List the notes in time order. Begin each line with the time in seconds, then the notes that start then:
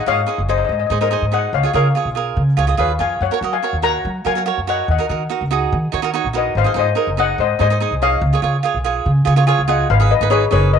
0.06 G#2 D#4 G#4 C#5 D#5 F5
0.26 D#4 G#4 C5
0.38 F#1
0.48 D#4 G#4 C5 D#5
0.58 D#5
0.65 D#5
0.69 G#2 D#5
0.79 D#5
0.87 G#2 D#4 D#5
0.91 G#4 C5
1.01 D#4 G#4 A#4 C5 D#5
1.11 D#4 G#4 C5
1.22 G#2
1.32 D#4 G#4 C5 D#5 F#5
1.53 C#2 C#5 F5
1.63 F4 G#4 C#5
1.73 C#3 F4 G#4 A#4 C#5 F5
1.95 F4 G#4 C#5
2.05 B1
2.15 F4 G#4 A#4
2.37 C#3
2.57 C#2 F4 G#4 C#5
2.67 F4 G#4 D#5
2.77 D#2 F4 G#4 B4 C#5 F5
2.99 F2 F4 G#4 C#5 F5 G#5
3.20 F#2 C#5 F#5
3.31 F#4 A#4 C#5
3.41 F#3 F#4 A#4 D#5
3.53 F5 G#5
3.63 F#4 A#4 C#5
3.73 D#2
3.82 F#4 A#4 C#5 F#5 A#5
4.05 F#3
4.25 F#3 F#4 A#4 C#5 F5 G#5
4.35 F#4 A#4 C#5
4.46 F#4 A#4 C#5
4.57 F#2
4.67 F#4 A#4 C#5 D#5 F#5
4.88 D#2 D#5 F#5
4.98 D#4 F#4 A#4
5.09 D#3 D#4 F#4 A#4
5.29 D#4 F#4 A#4
5.41 C#2
5.51 D#4 F#4 G#4
5.72 D#3
5.92 D#3 D#4 F#4 C#5
6.02 D#4 F#4 A#4
6.14 D#4 F#4 C#5
6.24 A#1
6.33 D#4 F#4 A#4 B4
6.38 D#5
6.55 G#1 C5 F5
6.64 D#4 G#4 C5
6.74 G#2 D#4 G#4 C5
6.78 C5 D#5
6.95 D#4 G#4 A#4
7.07 F#1
7.17 D#4 G#4 D#5 F#5
7.38 G#2 C5 D#5
7.59 G#2 D#4 G#4 C5 D#5
7.70 D#4 G#4 C5
7.80 D#4 G#4 C5
7.91 C2
8.02 D#4 G#4 C#5 D#5 F5
8.21 C#2
8.33 F4 G#4 C#5
8.42 C#3 F4 G#4 C#5
8.63 F4 G#4 C#5
8.74 B1
8.84 F4 G#4 C#5
9.06 C#3
9.25 C#3 F4 G#4 C#5
9.36 F4 G#4 C#5
9.47 F4 G#4 C#5 F5 G#5
9.59 C#2
9.68 F4 G#4 C#5 D#5 F#5
9.90 G#1 B4 F5
10.00 D#4 G#4 B4
10.11 B4 D#5
10.21 G#1 D#4 G#4 B4
10.30 D#4 G#4 B4 C#5
10.51 F#1 D#4 G#4 A#4 B4 C#5
10.73 B4 D#5